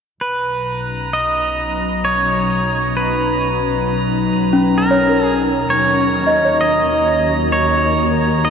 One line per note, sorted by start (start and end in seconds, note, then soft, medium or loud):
0.21 5.64 B1 medium
0.21 5.69 B2 medium
0.21 1.10 B4 medium
0.21 8.50 A#5 medium
0.41 5.69 F#3 medium
0.56 7.02 C#4 medium
0.56 7.89 D#4 medium
1.13 2.04 D#5 medium
2.05 2.99 C#5 medium
2.97 4.77 B4 medium
4.53 8.50 C#4 medium
4.78 5.26 A#4 medium
4.91 6.44 C#5 medium
5.09 6.64 A#4 soft
5.26 5.42 G#4 medium
5.68 8.50 D#2 medium
5.68 8.50 D#3 medium
5.68 6.60 C#5 medium
5.89 8.50 A#3 medium
6.23 8.50 F#4 medium
6.23 8.50 D#5 medium
6.45 8.50 C#5 soft
6.61 7.52 D#5 medium
7.52 8.44 C#5 medium
8.45 8.50 D#5 medium